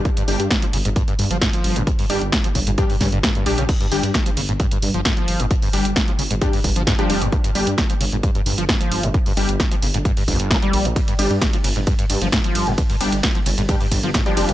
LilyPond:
<<
  \new Staff \with { instrumentName = "Synth stab" } { \time 4/4 \tempo 4 = 132 r8 <g d' g'>16 r2. r16 | r8 <g d' g'>16 r4 r16 <g d' g'>16 r4 r16 <g d' g'>16 r16 | r8 <g d' g'>16 r2. r16 | r8 <g d' g'>16 r4 r16 <g d' g'>16 r4 <g d' g'>16 <g d' g'>16 r16 |
r8 <g d' g'>16 r2. r16 | r8 <g d' g'>16 r2. r16 | r8 <g d' g'>16 r2. r16 | r8 <g d' g'>16 r4 r16 <g d' g'>16 r4 <g d' g'>16 <g d' g'>16 r16 | }
  \new Staff \with { instrumentName = "Acid bass" } { \clef bass \time 4/4 g,16 g,16 r8 g,16 f16 cis16 aes,16 g,16 g,16 g,,16 f16 aes,16 f8 g,16 | g,16 g,16 r8 g,16 f16 cis16 aes,16 g,16 g,16 cis16 g,16 g,16 g,16 r16 cis16 | g,16 g,16 r8 g,16 f16 cis16 aes,16 g,16 g,16 g,,16 f16 aes,16 f8 g,16 | g,16 g,16 r8 g,16 f16 cis16 aes,16 g,16 g,16 g,,16 f16 aes,16 f8 g,16 |
g,16 g,16 r8 g,16 f16 cis16 aes,16 g,16 g,16 g,,16 f16 aes,16 f8 g,16 | g,16 g,16 r8 g,16 f16 cis16 aes,16 g,16 g,16 f,16 g,,16 g16 g8 g,16 | g,16 g,16 r8 g,16 f16 cis16 aes,16 g,16 g,16 g,,16 f16 aes,16 f8 g,16 | g,16 g,16 r8 g,16 f16 cis16 aes,16 g,16 g,16 g,,16 f16 aes,16 f8 g,16 | }
  \new Staff \with { instrumentName = "Detuned saw bass" } { \clef bass \time 4/4 r8 g,,16 g,16 r8 g,,16 g,,16 r8 g,16 g,,16 r8 g,,16 g,,16 | r8 g,,16 g,,16 r8 g,,16 g,,16 r8 g,16 g,,16 r8 bes,,16 bes,,16 | r8 g,,16 g,16 r8 g,,16 g,,16 r8 g,16 g,,16 r8 g,,16 g,,16 | r8 g,,16 g,,16 r8 g,,16 g,,16 r8 g,,16 g,,16 r8 f,,16 g,,16 |
r8 g,,16 g,16 r8 g,,16 g,,16 r8 g,16 g,,16 r8 g,,16 g,,16 | r8 g,,16 g,,16 r8 g,,16 g,,16 r8 g,,16 g,,16 r8 bes,,16 bes,,16 | r8 g,,16 g,16 r8 g,,16 g,,16 r8 g,16 g,,16 r8 g,,16 g,,16 | r8 g,,16 g,,16 r8 g,,16 g,,16 r8 g,,16 g,,16 r8 f,,16 g,,16 | }
  \new DrumStaff \with { instrumentName = "Drums" } \drummode { \time 4/4 <hh bd>16 hh16 hho16 hh16 <hh bd sn>16 hh16 hho16 hh16 <hh bd>16 hh16 hho16 hh16 <hh bd sn>16 hh16 hho16 hh16 | <hh bd>16 hho16 hho16 hh16 <hh bd sn>16 hh16 <hho bd>16 hh16 <hh bd>16 hho16 <hho bd sn>16 hh16 <hh bd sn>16 hh16 hho16 hh16 | <cymc hh bd>16 hh16 hho16 hh16 <hh bd sn>16 hh16 hho16 hh16 <hh bd>16 hh16 hho16 hh16 <hh bd sn>16 hh16 hho16 hh16 | <hh bd>16 hho16 hho16 hh16 <hh bd sn>16 hh16 hho16 hh16 <hh bd>16 hho16 <hho bd>16 hh16 <hh bd sn>16 hh16 hho16 hh16 |
<hh bd>16 hh16 hho16 hh16 <hh bd sn>16 hh16 hho16 hh16 <hh bd>16 hh16 hho16 hh16 <hh bd sn>16 hh16 hho16 hh16 | <hh bd>16 hho16 hho16 hh16 <hh bd sn>16 hh16 hho16 hh16 <hh bd>16 hho16 <hho bd>16 hh16 <hh bd sn>16 hh16 hho16 hh16 | <hh bd cymr>16 hh16 <hho cymr>16 hh16 <hh bd cymr sn>16 hh16 <hho cymr>16 hh16 <hh bd cymr>16 hh16 <hho cymr>16 hh16 <hh bd cymr sn>16 hh16 <hho cymr>16 hh16 | <hh bd cymr>16 hho16 <hho cymr>16 hh16 <hh bd cymr sn>16 hh16 <hho cymr>16 hh16 <hh bd cymr>16 hho16 <hho bd cymr>16 hh16 <hh bd cymr sn>16 hh16 <hho cymr>16 hh16 | }
>>